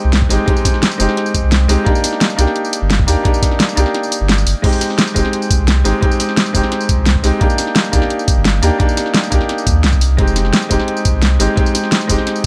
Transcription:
Already playing: grand piano G#3 C4 D#4 G4
0.04 sub bass C2
0.13 snare, closed hi-hat
0.22 kick
0.29 sub bass G#1, grand piano G#3 C4 D#4 G4, open hi-hat, tambourine
0.46 grand piano G#3 C4 D#4 G4, kick, closed hi-hat
0.57 tambourine
0.65 kick, snare, closed hi-hat, tambourine
0.74 snare
0.83 snare, closed hi-hat
0.91 tambourine
0.98 sub bass F1, grand piano G#3 C4 D#4 G4, closed hi-hat, tambourine
1.09 snare
1.17 snare, closed hi-hat
1.26 tambourine
1.34 kick, closed hi-hat, tambourine
1.43 sub bass C2
1.52 snare, closed hi-hat
1.68 sub bass C2, grand piano G#3 C4 D#4 G4, open hi-hat, tambourine
1.84 grand piano A#3 D4 D#4 G4, kick, closed hi-hat
1.95 tambourine
2.04 snare, closed hi-hat, tambourine
2.13 snare
2.21 snare, closed hi-hat
2.30 tambourine
2.36 sub bass C2, grand piano A#3 D4 D#4 G4, closed hi-hat, tambourine
2.47 snare
2.56 closed hi-hat
2.65 tambourine
2.73 closed hi-hat, tambourine
2.82 sub bass G1
2.90 snare, closed hi-hat
2.99 kick
3.07 sub bass D#2, grand piano A#3 D4 D#4 G4, open hi-hat, tambourine
3.23 grand piano A#3 D4 D#4 G4, kick, closed hi-hat
3.34 tambourine
3.42 kick, snare, closed hi-hat, tambourine
3.51 snare
3.60 snare, closed hi-hat
3.69 tambourine
3.75 sub bass C2, grand piano A#3 D4 D#4 G4, closed hi-hat, tambourine
3.86 snare
3.95 snare, closed hi-hat
4.03 tambourine
4.12 closed hi-hat, tambourine
4.21 sub bass G1
4.29 snare, closed hi-hat
4.38 tambourine
4.47 sub bass G1, open hi-hat, tambourine
4.62 grand piano G#3 C4 D#4 G4, kick, closed hi-hat, crash
4.73 tambourine
4.81 snare, closed hi-hat, tambourine
4.90 snare
4.99 snare, closed hi-hat
5.07 tambourine
5.14 sub bass F1, grand piano G#3 C4 D#4 G4, kick, closed hi-hat, tambourine
5.25 snare
5.33 closed hi-hat
5.42 tambourine
5.51 kick, closed hi-hat, tambourine
5.59 sub bass C2
5.68 snare, closed hi-hat
5.84 sub bass G#1, grand piano G#3 C4 D#4 G4, open hi-hat, tambourine
6.01 grand piano G#3 C4 D#4 G4, kick, closed hi-hat
6.11 tambourine
6.20 snare, closed hi-hat, tambourine
6.29 snare
6.37 snare, closed hi-hat
6.46 tambourine
6.53 sub bass F1, grand piano G#3 C4 D#4 G4, kick, closed hi-hat, tambourine
6.63 snare
6.72 snare, closed hi-hat
6.81 tambourine
6.89 kick, closed hi-hat, tambourine
6.98 sub bass C2
7.06 snare, closed hi-hat
7.15 kick
7.23 sub bass C2, grand piano G#3 C4 D#4 G4, open hi-hat, tambourine
7.40 grand piano A#3 D4 D#4 G4, kick, closed hi-hat
7.50 tambourine
7.58 snare, closed hi-hat, tambourine
7.67 snare
7.76 snare, closed hi-hat
7.84 tambourine
7.92 sub bass C2, grand piano A#3 D4 D#4 G4, kick, closed hi-hat, tambourine
8.02 snare
8.10 closed hi-hat
8.19 tambourine
8.28 kick, closed hi-hat, tambourine
8.37 sub bass G1
8.45 snare, closed hi-hat
8.62 sub bass D#2, grand piano A#3 D4 D#4 G4, open hi-hat, tambourine
8.78 grand piano A#3 D4 D#4 G4, kick, closed hi-hat
8.89 tambourine
8.97 snare, closed hi-hat, tambourine
9.06 snare
9.14 snare, closed hi-hat
9.23 tambourine
9.30 sub bass C2, grand piano A#3 D4 D#4 G4, kick, closed hi-hat, tambourine
9.41 snare
9.49 snare, closed hi-hat
9.58 tambourine
9.67 sub bass D#2, kick, closed hi-hat, tambourine
9.84 sub bass C2, snare, closed hi-hat
9.93 kick, tambourine
10.01 open hi-hat, tambourine
10.17 sub bass F1, grand piano G#3 C4 D#4 G4, kick, closed hi-hat
10.27 tambourine
10.36 snare, closed hi-hat, tambourine
10.45 snare
10.53 snare, closed hi-hat
10.62 tambourine
10.69 sub bass F1, grand piano G#3 C4 D#4 G4, kick, closed hi-hat, tambourine
10.79 snare
10.88 closed hi-hat
10.97 tambourine
11.05 kick, closed hi-hat, tambourine
11.14 sub bass C2
11.22 snare, closed hi-hat
11.39 sub bass G#1, grand piano G#3 C4 D#4 G4, open hi-hat, tambourine
11.56 grand piano G#3 C4 D#4 G4, kick, closed hi-hat
11.66 tambourine
11.75 snare, closed hi-hat, tambourine
11.84 snare
11.92 snare, closed hi-hat
12.01 tambourine
12.07 sub bass F1, grand piano G#3 C4 D#4 G4, kick, closed hi-hat, tambourine
12.18 snare
12.27 snare, closed hi-hat
12.36 tambourine

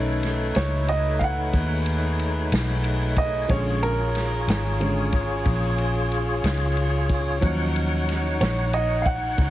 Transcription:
Already playing: fingered electric bass B1, grand piano D#3 A3 C#4, tonewheel organ A3 D#4 C#5, horn section D#4 A4 B4
0.23 snare, ride
0.55 fingered electric bass C#2, grand piano C#5, snare, ride
0.88 grand piano D#5, ride
1.19 grand piano F5, kick, ride
1.24 grand piano F#5
1.51 fingered electric bass D#2, horn section G#4, kick, ride
1.86 ride
2.19 ride
2.52 fingered electric bass B1, snare, ride
2.84 ride
3.17 grand piano D#5, kick, ride
3.48 fingered electric bass A#1, grand piano D3 G#3 C#4 C#5, horn section C#4 C#5, tonewheel organ F4 G#4 C#5, kick, ride
3.83 grand piano A#4, ride
4.15 snare, ride
4.47 fingered electric bass G#1, snare, ride
4.80 grand piano D3 G#3 C#4, ride
5.12 kick, ride
5.45 fingered electric bass A#1, kick, ride
5.78 ride
6.11 ride
6.44 fingered electric bass C#2, snare, ride
6.77 ride
7.09 kick, ride
7.41 fingered electric bass D#2, grand piano F3 F#3 C#4, horn section D#4 F#5, tonewheel organ D#4 C#5 F#5, kick, ride
7.76 ride
8.09 snare, ride
8.40 fingered electric bass A#1, grand piano C#5, snare, ride
8.73 grand piano D#5, ride
9.02 grand piano F5, kick
9.06 grand piano F#5, ride
9.38 fingered electric bass C#2, kick, ride

